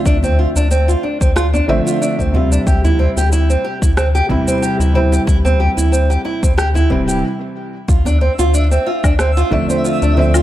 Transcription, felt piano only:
X:1
M:4/4
L:1/8
Q:"Swing 16ths" 1/4=92
K:Dm
V:1 name="Felt piano"
[D,F,A,Ce]4- [D,F,A,Ce] [D,F,A,Ce]2 [C,G,Ce]- | [C,G,Ce]4- [C,G,Ce] [C,E,G,CE]2 [C,E,G,CE]- | [C,E,G,CE]4- [C,E,G,CE] [C,E,G,CE] z2 | z4 z [D,F,A,Ce]2 [D,F,A,Ce] |]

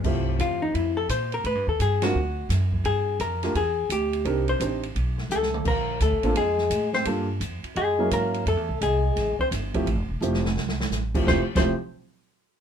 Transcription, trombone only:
X:1
M:4/4
L:1/16
Q:"Swing" 1/4=171
K:F
V:1 name="Trombone"
z16 | z16 | z16 | z12 A,4 |
B,4 A,4 _A,6 C2 | z8 _A,4 B,4 | A,4 _A,6 C2 z4 | z16 |
C z2 C2 z8 z3 |]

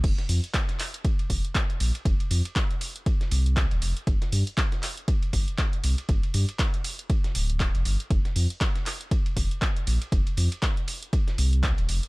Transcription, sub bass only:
X:1
M:4/4
L:1/16
Q:"Swing 16ths" 1/4=119
K:Gphr
V:1 name="Sub bass" clef=bass
F,,, z F,, z6 z F,,, z3 B,,, z | F,,, z F,, z6 z C,,3 E,,, F,,, z | G,,, z G,, z6 z G,,, z3 C,, z | G,,, z G,, z6 z D,,,3 F,,, G,,, z |
F,,, z F,, z6 z F,,, z3 B,,, z | F,,, z F,, z6 z C,,3 E,,, F,,, z |]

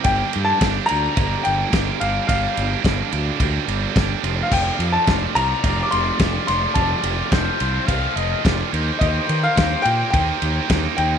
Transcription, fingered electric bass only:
X:1
M:4/4
L:1/8
Q:1/4=107
K:Gm
V:1 name="Fingered electric bass" clef=bass
G,,, G,, G,,, D,, G,,, G,,, G,,, G,,, | G,,, G,,, G,,, D,, D,, G,,, G,,, F,,, | F,,, F,, F,,, C,, F,,, F,,, F,,, F,,, | F,,, F,,, F,,, C,, C,, F,,, F,,, E,, |
E,, E, E,, B,, E,, E,, E,, E,, |]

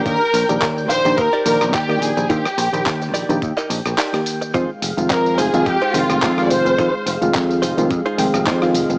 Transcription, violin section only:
X:1
M:4/4
L:1/16
Q:"Swing 16ths" 1/4=107
K:Fdor
V:1 name="Violin section"
B4 z2 c2 B2 B2 G2 A2 | G6 z8 z2 | z4 B2 A2 G2 F3- F/2 d/2 c2- | c2 z12 z2 |]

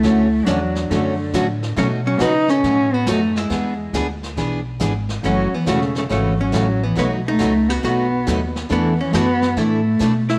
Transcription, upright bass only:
X:1
M:4/4
L:1/8
Q:"Swing" 1/4=138
K:Bdor
V:1 name="Upright bass" clef=bass
D,,2 E,,2 F,,2 A,,2 | B,,2 C,2 A,,2 F,,2 | E,,2 D,,2 B,,,2 G,,,2 | F,,, z E,,,2 G,,,2 A,,,2 |
B,,,2 C,,2 B,,,2 ^D,,2 | E,,2 F,,2 A,,2 B,,2 |]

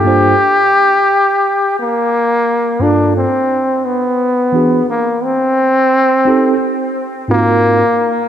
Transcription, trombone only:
X:1
M:4/4
L:1/8
Q:"Swing 16ths" 1/4=87
K:Gm
V:1 name="Trombone"
G4- G B,3 | D C2 =B,3 _B, C- | C4 z B,3 |]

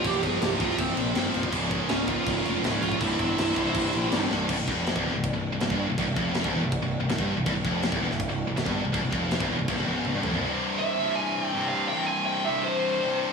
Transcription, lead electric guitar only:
X:1
M:4/4
L:1/8
Q:1/4=162
K:none
V:1 name="Lead electric guitar"
G _A G F C3 z | z2 _D F3 z F | E6- E z | z8 |
z8 | z8 | z8 | z2 e2 _a g2 f |
g _a g e c3 z |]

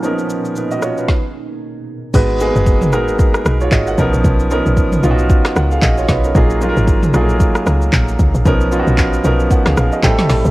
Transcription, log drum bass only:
X:1
M:4/4
L:1/16
Q:"Swing 16ths" 1/4=114
K:Blyd
V:1 name="Log drum bass" clef=bass
z16 | G,,,3 F,,,3 G,,,3 z B,,,2 G,,,2 B,,, A,,, | B,,,3 A,,,3 B,,,3 z C,,2 A,,,2 B,,,2 | A,,,3 G,,,3 A,,,3 z C,,2 A,,,2 C,, A,,, |
B,,,3 A,,,3 B,,,2 z C,, A,,, z =A,,, z A,,, B,,, |]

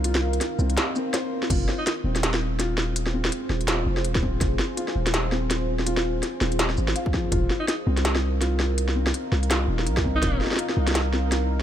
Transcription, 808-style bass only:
X:1
M:4/4
L:1/8
Q:"Swing 16ths" 1/4=165
K:Fm
V:1 name="808-style bass" clef=bass
C,,2 z C,, z4 | F,,, z2 E,,,4- E,,,- | E,,,2 z E,,,2 F,,, E,,,2 | F,,, z2 E,,,4- E,,,- |
E,,,2 z E,,,2 A,,, z2 | E,,, z2 C,,4- C,,- | C,,2 z C,,2 E,,, C,,2 | E,,, z2 C,,4- C,, |]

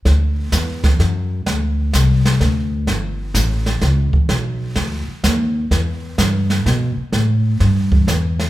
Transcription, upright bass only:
X:1
M:3/4
L:1/8
Q:"Swing" 1/4=127
K:D
V:1 name="Upright bass" clef=bass
D,,2 E,,2 F,,2 | D,,2 =C,,2 D,,2 | G,,,2 A,,,2 C,, z | B,,,2 D,, z _E,,2 |
E,,2 G,,2 B,, z | A,,2 G,,2 E,,2 |]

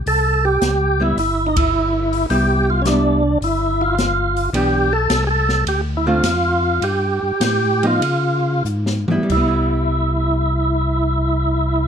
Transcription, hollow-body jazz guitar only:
X:1
M:4/4
L:1/8
Q:"Swing" 1/4=106
K:C
V:1 name="Hollow-body jazz guitar"
z3 [G,B,E] z4 | [G,B,E]2 [G,B,E] z4 z | [E,B,DG] z4 [D,A,CF] z2 | z3 [F,B,_E] z3 [G,_C=E] |
[G,B,E]8 |]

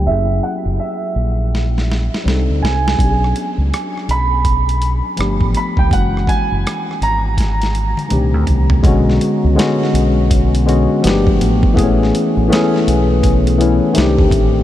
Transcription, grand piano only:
X:1
M:4/4
L:1/16
Q:"Swing 16ths" 1/4=82
K:Bdor
V:1 name="Grand piano"
e2 f2 e8 z2 g2- | g6 b8 b =g | f2 g4 ^a8 z2 | z16 |
z16 |]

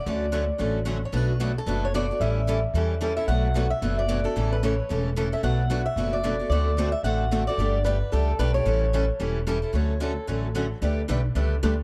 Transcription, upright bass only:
X:1
M:4/4
L:1/8
Q:"Swing" 1/4=223
K:D
V:1 name="Upright bass" clef=bass
D,,4 A,,,4 | B,,,4 F,,,4 | A,,,4 E,,4 | B,,,4 F,,,4 |
A,,,4 E,,,4 | B,,,4 F,,,4 | D,,4 A,,,4 | G,,,4 C,,2 B,,,2 |
A,,,4 E,,,4 | D,,4 A,,,4 | D,,2 B,,,2 C,,2 D,,2 |]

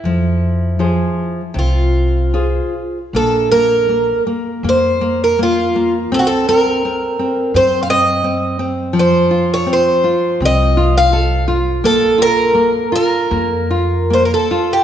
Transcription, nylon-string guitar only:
X:1
M:4/4
L:1/8
Q:1/4=81
K:Fm
V:1 name="Nylon-string guitar"
F,2 [F,Ac]2 C,2 [FAc]2 | [K:Fphr] B, B, B, B, B, B, B, B, | C C C C C C C C | F, F C F C F =A F |
B, F B, F B, F B, F |]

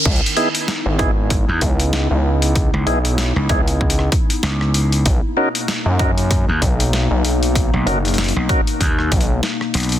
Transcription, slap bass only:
X:1
M:4/4
L:1/16
Q:"Swing 16ths" 1/4=96
K:C#dor
V:1 name="Slap bass" clef=bass
z8 z E,, z6 | z C,, z3 C,, z6 C,,4 | z8 z D,, z6 | z B,,, z3 B,,, z2 D,,2 z4 B,,,2 |]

